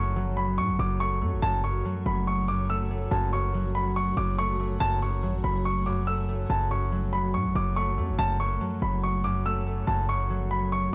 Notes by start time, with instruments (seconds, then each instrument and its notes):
Already playing: 808-style bass F#1, harp F#2 F#3 A3, ambient pad A3 F#4 C#5, grand piano C#6
0.16 harp F#3
0.37 grand piano B5
0.58 808-style bass A2, grand piano C#6
0.69 808-style bass F#1
0.79 808-style bass F#1, harp F#2, grand piano D6
1.00 harp A3, grand piano C#6
1.21 808-style bass F#2, harp A3
1.33 808-style bass F#1
1.42 808-style bass F#1, harp F#2, ambient pad A3, grand piano A5
1.64 harp F#2, grand piano C#6
1.85 harp F#3
2.06 808-style bass F#1, grand piano B5
2.27 grand piano C#6
2.48 harp F#2, grand piano D6
2.69 harp A3, grand piano E6
2.90 harp A3
3.11 808-style bass F#1, harp F#2, grand piano A5
3.33 harp F#2, grand piano C#6
3.54 harp F#3
3.75 grand piano B5
3.96 grand piano C#6
4.17 808-style bass F#1, harp F#2, grand piano D6
4.38 harp A3, grand piano C#6
4.60 harp A3
4.80 808-style bass F#1, harp F#2, ambient pad A3, grand piano A5
5.02 harp F#2, grand piano C#6
5.23 808-style bass G#1, harp F#3
5.44 808-style bass F#1, grand piano B5
5.65 grand piano C#6
5.86 harp F#2, grand piano D6
6.07 harp A3, grand piano E6
6.28 harp A3
6.49 808-style bass F#1, harp F#2, grand piano A5
6.71 harp F#2, grand piano C#6
6.92 harp F#3
7.13 grand piano B5
7.34 808-style bass A2, grand piano C#6
7.45 808-style bass F#1
7.55 808-style bass F#1, harp F#2, grand piano D6
7.76 harp A3, grand piano C#6
7.97 808-style bass F#2, harp A3
8.09 808-style bass F#1
8.19 808-style bass F#1, harp F#2, ambient pad F#4 C#5, grand piano A5
8.40 harp F#2, grand piano C#6
8.61 harp F#3
8.82 808-style bass F#1, grand piano B5
9.03 grand piano C#6
9.24 harp F#2, grand piano D6
9.45 harp A3, grand piano E6
9.66 harp A3
9.87 808-style bass F#1, harp F#2, grand piano A5
10.09 harp F#2, grand piano C#6
10.30 harp F#3
10.51 grand piano B5
10.72 grand piano C#6